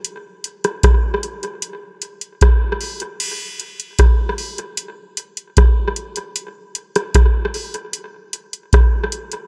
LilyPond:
\new DrumStaff \with { instrumentName = "Drums" } \drummode { \time 4/4 \tempo 4 = 76 hh8 hh16 <hh ss>16 <hh bd ss>8 hh16 hh16 hh8 hh16 hh16 <hh bd ss>8 hho16 hh16 | <cymc hh>8 hh16 hh16 <hh bd ss>8 hho16 hh16 hh8 hh16 hh16 <hh bd ss>8 hh16 hh16 | hh8 hh16 <hh ss>16 <hh bd ss>8 hho16 hh16 hh8 hh16 hh16 <hh bd ss>8 hh16 hh16 | }